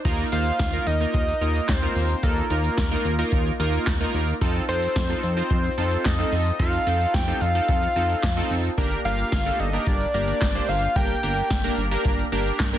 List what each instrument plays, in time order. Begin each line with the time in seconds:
0.05 analog synth bass D#2, synth keys A#3 D#4 F4 A#4, kick, closed hi-hat, crash
0.18 closed hi-hat
0.32 analog synth bass D#2, synth keys A#3 D#4 F4 C5, analog synth lead F5, closed hi-hat
0.46 closed hi-hat
0.59 analog synth bass D#2, kick, snare, closed hi-hat
0.73 synth keys A#3 D#4 F4 A#4, closed hi-hat
0.87 analog synth bass D#2, analog synth lead D#5, closed hi-hat
1.00 synth keys A#3 D#4 F4 A#4, closed hi-hat
1.14 analog synth bass D#2, analog synth lead D#5, kick, closed hi-hat
1.28 closed hi-hat
1.41 analog synth bass D#2, synth keys A#3 D#4 F4 A#4, closed hi-hat
1.55 closed hi-hat
1.69 analog synth bass D#2, analog synth lead C5, kick, snare, clap, closed hi-hat
1.82 synth keys A#3 D#4 F4 A#4, closed hi-hat
1.96 analog synth bass D#2, open hi-hat
2.09 closed hi-hat
2.23 analog synth bass D#2, synth keys A#3 D#4 F4 A4, analog synth lead A#4, kick, closed hi-hat
2.37 closed hi-hat
2.50 analog synth bass D#2, synth keys A#3 D#4 F4 A#4, closed hi-hat
2.64 closed hi-hat
2.78 analog synth bass D#2, kick, snare, closed hi-hat
2.91 synth keys A#3 D#4 F4 A#4, closed hi-hat
3.05 analog synth bass D#2, closed hi-hat
3.19 synth keys A#3 D#4 F4 A#4, closed hi-hat
3.32 analog synth bass D#2, kick, closed hi-hat
3.46 closed hi-hat
3.60 analog synth bass D#2, synth keys A#3 D#4 F4 A#4, closed hi-hat
3.73 closed hi-hat
3.87 analog synth bass D#2, kick, snare, clap, closed hi-hat
4.01 synth keys A#3 D#4 F4 A#4, closed hi-hat
4.14 analog synth bass D#2, open hi-hat
4.28 closed hi-hat
4.41 analog synth bass F2, synth keys C4 D#4 F4 A4, kick, closed hi-hat
4.55 closed hi-hat
4.69 analog synth bass F2, synth keys C4 D#4 F4 A4, analog synth lead C5, closed hi-hat
4.82 closed hi-hat
4.96 analog synth bass F2, kick, snare, closed hi-hat
5.10 synth keys C4 D#4 F4 A4, closed hi-hat
5.23 analog synth bass F2, analog synth lead C5, closed hi-hat
5.37 synth keys C4 D#4 F4 C5, closed hi-hat
5.50 analog synth bass F2, kick, closed hi-hat
5.64 closed hi-hat
5.78 analog synth bass F2, synth keys C4 D#4 F4 A4, closed hi-hat
5.91 closed hi-hat
6.05 analog synth bass F2, analog synth lead D#5, kick, snare, clap, closed hi-hat
6.19 synth keys C4 D#4 F4 A4, closed hi-hat
6.32 analog synth bass F2, open hi-hat
6.46 closed hi-hat
6.59 analog synth bass F2, synth keys C4 D#4 F4 A4, analog synth lead F5, kick, closed hi-hat
6.73 closed hi-hat
6.87 analog synth bass F2, synth keys C4 D#4 F4 A4, closed hi-hat
7.01 closed hi-hat
7.14 analog synth bass F2, analog synth lead G5, kick, snare, closed hi-hat
7.28 synth keys C4 D#4 F4 A4, closed hi-hat
7.41 analog synth bass F2, analog synth lead F5, closed hi-hat
7.55 synth keys C4 D#4 F4 A4, closed hi-hat
7.68 analog synth bass F2, kick, closed hi-hat
7.83 closed hi-hat
7.96 analog synth bass F2, synth keys C4 D#4 F4 A4, closed hi-hat
8.10 closed hi-hat
8.23 analog synth bass F2, kick, snare, clap, closed hi-hat
8.37 synth keys C4 D#4 F4 A4, closed hi-hat
8.50 analog synth bass F2, open hi-hat
8.64 closed hi-hat
8.78 analog synth bass G1, synth keys A#3 D4 G4 A#4, kick, closed hi-hat
8.91 closed hi-hat
9.05 analog synth bass G1, synth keys A#3 D4 G4 A#4, analog synth lead F5, closed hi-hat
9.19 closed hi-hat
9.32 analog synth bass G1, kick, snare, closed hi-hat
9.46 synth keys A#3 D4 G4 A4, closed hi-hat
9.59 analog synth bass G1, analog synth lead D#5, closed hi-hat
9.73 synth keys A#3 D4 G4 A#4, closed hi-hat
9.87 analog synth bass G1, analog synth lead D5, kick, closed hi-hat
10.01 closed hi-hat
10.14 analog synth bass G1, synth keys A#3 D4 G4 A#4, analog synth lead D5, closed hi-hat
10.28 closed hi-hat
10.41 analog synth bass G1, kick, snare, clap, closed hi-hat
10.55 synth keys A#3 D4 G4 C5, closed hi-hat
10.69 analog synth bass G1, analog synth lead F5, open hi-hat
10.82 closed hi-hat
10.96 analog synth bass G1, synth keys A#3 D4 G4 A#4, analog synth lead G5, kick, closed hi-hat
11.10 closed hi-hat
11.23 analog synth bass G1, synth keys A#3 D4 G4 A#4, closed hi-hat
11.37 closed hi-hat
11.50 analog synth bass G1, kick, snare, closed hi-hat
11.64 synth keys A#3 D4 G4 A#4, closed hi-hat
11.78 analog synth bass G1, closed hi-hat
11.91 synth keys A#3 D4 G4 A#4, closed hi-hat
12.05 analog synth bass G1, kick, closed hi-hat
12.19 closed hi-hat
12.32 analog synth bass G1, synth keys A#3 D4 G4 A#4, closed hi-hat
12.46 closed hi-hat
12.60 analog synth bass G1, kick, snare, clap, closed hi-hat
12.73 synth keys A#3 D4 G4 A#4, closed hi-hat